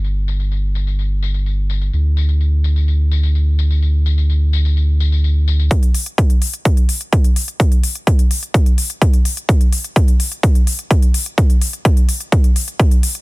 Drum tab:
HH |----------------|----------------|----------------|xxoxxxoxxxoxxxox|
TB |x-xxx-xxx-xxx-xx|x-xxx-xxx-xxx-xx|x-xxx-xxx-xxx-xx|----------------|
BD |----------------|----------------|----------------|o---o---o---o---|

HH |xxoxxxoxxxoxxxox|xxoxxxoxxxoxxxox|xxoxxxoxxxoxxxox|
TB |----------------|----------------|----------------|
BD |o---o---o---o---|o---o---o---o---|o---o---o---o---|